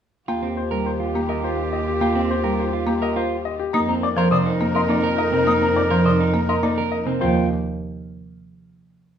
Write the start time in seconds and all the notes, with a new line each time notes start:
0.28 D#2 A#3 F4 G4 G5
0.42 C4 G5
0.57 C5
0.71 G3 A#4
0.86 C5
1.00 F4
1.15 A#3 G4
1.29 A#4 D#5
1.43 F4 C5
1.73 D#5
1.88 G4
2.01 A#3 F4 G5
2.15 C4 G5
2.31 C5
2.44 G3 A#4
2.59 C5
2.73 F4
2.87 A#3 G4
3.02 A#4 D#5
3.16 F4 C5
3.45 D#5
3.59 G4
3.73 F2 A#3 D#4 A#4 A#5 D#6
3.88 C4 A#5
4.03 D5 D6
4.17 F3 A#4 C5
4.31 C3 C5 D5 D#6
4.46 D#4
4.61 A#3 A#4
4.75 A#4 D#5 C6
4.89 A#3 D#4 D5
5.04 A#4
5.18 D#5
5.32 C3 C4 A#4
5.47 A#3 D#4 A#5 D#6
5.62 C4 A#5
5.76 D5 D6
5.90 F3 A#4 C5
6.05 C3 C5 D5 D#6
6.20 D#4
6.33 A#3 A#4
6.49 A#4 D#5 C6
6.63 A#3 D#4 D5
6.78 A#4
6.92 D#5
7.06 C3 C4 A#4
7.21 D#2 F3 F4 C5 G5